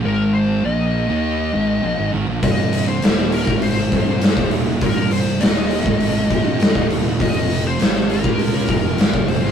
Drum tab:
HH |----------------|o-o-o-o-o-o-o-o-|o-o-o-o-o-o-o-o-|o-o-o-o-o-o-o-o-|
SD |----------------|----o-------o---|----o-------o---|----o-------o--o|
BD |----------------|o------o--o--o--|o------o--o--o--|o------o--o--o--|